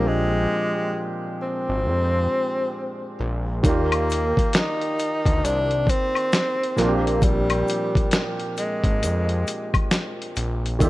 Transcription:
Already playing: analog synth bass A#1, felt piano A#2 F3 G#3 C4 D4 G4
0.08 tenor saxophone G#3
1.42 tenor saxophone C4
1.69 analog synth bass G#1
1.86 analog synth bass F2
3.20 analog synth bass A#1
3.63 analog synth bass D#2, felt piano D#3 A#3 F4 D5, tenor saxophone A#3, kick, closed hi-hat, shaker
3.68 felt piano G4
3.92 closed hi-hat, high woodblock
4.10 closed hi-hat, shaker
4.37 kick, closed hi-hat
4.53 tenor saxophone D#4, snare, closed hi-hat, shaker
4.81 closed hi-hat
4.99 closed hi-hat, shaker
5.25 analog synth bass D2, kick, closed hi-hat
5.44 analog synth bass C2, tenor saxophone D4, closed hi-hat, shaker
5.71 closed hi-hat
5.87 tenor saxophone C4, kick, closed hi-hat, shaker
6.15 closed hi-hat, high woodblock
6.33 snare, closed hi-hat, shaker
6.63 closed hi-hat
6.76 analog synth bass A#1, felt piano A#2 F3 A#3 C4, tenor saxophone A#3, snare, closed hi-hat, shaker
6.81 felt piano D4 F4
6.88 felt piano G4
7.07 closed hi-hat
7.22 tenor saxophone G3, kick, closed hi-hat, shaker
7.50 closed hi-hat, high woodblock
7.68 closed hi-hat, shaker
7.95 kick, closed hi-hat
8.11 snare, closed hi-hat, shaker
8.40 closed hi-hat
8.57 tenor saxophone G#3, closed hi-hat, shaker
8.84 analog synth bass G#1, kick, closed hi-hat
9.03 analog synth bass F2, closed hi-hat, shaker
9.29 closed hi-hat
9.47 closed hi-hat, shaker
9.74 kick, closed hi-hat, high woodblock
9.91 snare, closed hi-hat, shaker
10.22 closed hi-hat
10.36 analog synth bass A#1, closed hi-hat, shaker
10.66 closed hi-hat
10.79 analog synth bass D#2, felt piano D#3 A#3 D5, tenor saxophone A#3, kick, closed hi-hat, shaker
10.83 felt piano F4 G4

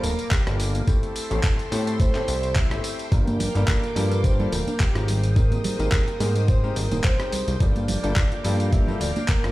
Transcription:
Already playing: string machine A#3 F5 G5 D6
0.03 analog synth bass D1, soft synth lead A#4, open hi-hat, tambourine
0.19 closed hi-hat, tambourine
0.31 soft synth lead G4, kick, clap, closed hi-hat, tambourine
0.46 analog synth bass G1, grand piano G3 A#3 D4 F4 A4, cross-stick, closed hi-hat, tambourine
0.60 open hi-hat, tambourine
0.75 closed hi-hat, tambourine
0.87 grand piano A3 C4 E4 G4 A4, soft synth lead A4, string machine A4 E5 G5 C6, kick, closed hi-hat, tambourine
1.03 closed hi-hat, tambourine
1.16 open hi-hat, tambourine
1.30 analog synth bass A1, grand piano A3 C4 E4 G4 A4, closed hi-hat, tambourine
1.43 kick, clap, closed hi-hat, tambourine
1.59 closed hi-hat, tambourine
1.71 analog synth bass A2, grand piano A3 C4 E4 G4 A4, open hi-hat, tambourine
1.87 closed hi-hat, tambourine
2.00 soft synth lead C5, kick, closed hi-hat, tambourine
2.14 grand piano A3 C4 E4 G4 A4, clap, closed hi-hat, tambourine
2.28 analog synth bass C2, open hi-hat, tambourine
2.43 closed hi-hat, tambourine
2.56 soft synth lead E5, kick, clap, closed hi-hat, tambourine
2.71 analog synth bass G1, grand piano A3 C4 E4 G4 A4, cross-stick, closed hi-hat, tambourine
2.84 open hi-hat, tambourine
2.99 closed hi-hat, tambourine
3.11 analog synth bass G1, synth arpeggio sound F3, grand piano G3 A#3 D4 F4 A#4, string machine A#3 F5 D6, soft synth lead A#4, kick, closed hi-hat, tambourine
3.27 synth arpeggio sound A#3, closed hi-hat, tambourine, high conga
3.40 synth arpeggio sound F3, open hi-hat, tambourine, low conga
3.55 analog synth bass G1, grand piano G3 A#3 D4 F4 A4, synth arpeggio sound D4, closed hi-hat, tambourine
3.68 synth arpeggio sound F3, kick, clap, closed hi-hat, tambourine
3.84 synth arpeggio sound F4, closed hi-hat, tambourine
3.95 analog synth bass G2, synth arpeggio sound F3, grand piano G3 A#3 D4 F4 A4, open hi-hat, tambourine, high conga
4.11 synth arpeggio sound F3, closed hi-hat, tambourine
4.24 synth arpeggio sound F3, soft synth lead C5, kick, closed hi-hat, tambourine
4.39 grand piano G3 A#3 D4 F4 A4, synth arpeggio sound A#3, tambourine, low conga
4.52 analog synth bass D1, synth arpeggio sound F3, soft synth lead A#4, open hi-hat, tambourine
4.67 synth arpeggio sound D4, closed hi-hat, tambourine, high conga
4.80 synth arpeggio sound F3, soft synth lead G4, kick, clap, closed hi-hat, tambourine
4.95 analog synth bass G#1, grand piano G#3 C4 D#4 G4 A#4, synth arpeggio sound F4, cross-stick, closed hi-hat, tambourine
5.08 synth arpeggio sound G3, string machine C5 G5 D#6, open hi-hat, tambourine
5.23 synth arpeggio sound G3, closed hi-hat, tambourine
5.36 synth arpeggio sound G3, grand piano G#3 C4 D#4 G4 A#4, soft synth lead A#4, kick, closed hi-hat, tambourine
5.52 synth arpeggio sound C4, closed hi-hat, tambourine, high conga
5.64 synth arpeggio sound G3, open hi-hat, tambourine, low conga
5.79 analog synth bass G#1, grand piano G#3 C4 D#4 G4 A#4, synth arpeggio sound D#4, closed hi-hat, tambourine
5.92 synth arpeggio sound G3, kick, clap, closed hi-hat, tambourine
6.08 synth arpeggio sound G4, closed hi-hat, tambourine
6.20 analog synth bass G#2, synth arpeggio sound G3, grand piano G#3 C4 D#4 G4 A#4, open hi-hat, tambourine, high conga
6.36 synth arpeggio sound G3, closed hi-hat, tambourine
6.48 synth arpeggio sound G3, soft synth lead C5, kick, closed hi-hat, tambourine
6.63 grand piano G#3 C4 D#4 G4 A#4, synth arpeggio sound C4, tambourine
6.76 analog synth bass G#1, synth arpeggio sound G3, soft synth lead A#4, open hi-hat, tambourine
6.91 analog synth bass D#1, synth arpeggio sound D#4, closed hi-hat, tambourine, high conga
7.04 synth arpeggio sound G3, soft synth lead C5, kick, clap, closed hi-hat, tambourine
7.19 grand piano G#3 C4 D#4 G4 A#4, synth arpeggio sound G4, cross-stick, closed hi-hat, tambourine
7.32 analog synth bass C2, synth arpeggio sound G3, open hi-hat, tambourine
7.47 analog synth bass C2, synth arpeggio sound G3, closed hi-hat, tambourine
7.60 analog synth bass G1, synth arpeggio sound F3, grand piano G3 A#3 D4 F4 A4, string machine A#3 F5 D6, soft synth lead D5, kick, closed hi-hat, tambourine
7.76 synth arpeggio sound A#3, closed hi-hat, tambourine, high conga
7.88 synth arpeggio sound F3, open hi-hat, tambourine, low conga
8.03 analog synth bass G1, grand piano G3 A#3 D4 F4 A4, synth arpeggio sound D4, closed hi-hat, tambourine
8.16 synth arpeggio sound F3, kick, clap, closed hi-hat, tambourine
8.32 synth arpeggio sound F4, closed hi-hat, tambourine
8.44 analog synth bass G2, synth arpeggio sound F3, grand piano G3 A#3 D4 F4 A4, open hi-hat, tambourine, high conga
8.60 synth arpeggio sound F3, closed hi-hat, tambourine
8.73 synth arpeggio sound F3, soft synth lead E5, kick, closed hi-hat, tambourine
8.87 grand piano G3 A#3 D4 F4 A4, synth arpeggio sound A#3, tambourine, low conga
9.01 analog synth bass D1, synth arpeggio sound F3, soft synth lead D5, open hi-hat, tambourine
9.16 synth arpeggio sound D4, closed hi-hat, tambourine, high conga
9.28 synth arpeggio sound F3, soft synth lead A#4, kick, clap, closed hi-hat, tambourine
9.43 analog synth bass G1, grand piano G3 A#3 D4 F4 A4, synth arpeggio sound F4, cross-stick, closed hi-hat, tambourine

